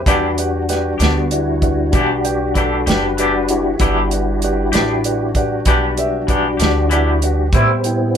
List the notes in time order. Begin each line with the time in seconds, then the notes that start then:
0.06 E2 E3 G3 B3 D4 F#4 G4 B4 D5 F#5, kick, closed hi-hat
0.38 G4 B4 D5 F#5, closed hi-hat
0.69 G4 B4 D5 F#5, snare, closed hi-hat
0.98 D2 B3 D4 G4 B4 D5 F#5, closed hi-hat
1.02 B3, snare
1.31 E4 G4 B4 D5 F#5, closed hi-hat
1.62 G4 B4 D5 F#5, kick, closed hi-hat
1.93 B1 E3 B3 D4 G4 B4 D5 F#5, kick, closed hi-hat
2.24 G4 B4 D5 G5, closed hi-hat
2.55 E3 B3 D4 G4 A4 B4 D5 F#5, kick, closed hi-hat
2.86 F#1 B3 D4 G4 B4 D5 G5, snare, closed hi-hat
3.17 E3 B3 D4 G4 B4 D5 F#5, closed hi-hat
3.48 E4 G4 B4 D5 F#5, closed hi-hat
3.78 G1 E3 G3 B3 D4 F#4 G4 B4 D5 F#5, kick, closed hi-hat
4.11 G4 B4 D5 F#5, closed hi-hat
4.42 G4 B4 D5 F#5, closed hi-hat
4.72 A1 B3 D4 G4 B4 D5 G5, snare, closed hi-hat
5.04 G4 B4 D5 F#5, closed hi-hat
5.35 G4 B4 D5 F#5, kick, closed hi-hat
5.65 B1 E3 B3 D4 G4 B4 D5 F#5, kick, closed hi-hat
5.97 G4 B4 D5 E5, closed hi-hat
6.27 E3 B3 D4 G4 B4 D5 F#5, kick, closed hi-hat
6.57 D2 B3 D4 G4, closed hi-hat
6.61 G4 B4 D5 F#5, snare
6.87 E3 B3 D#4, closed hi-hat
6.92 D4 E4 G4 B4 D5 F#5
7.22 G4 B4 D5 F#5, closed hi-hat
7.52 A2 G3 B3 C4 E4 G4 B4 C5 E5, kick, closed hi-hat
7.84 E4 G4 B4 C5 G5, closed hi-hat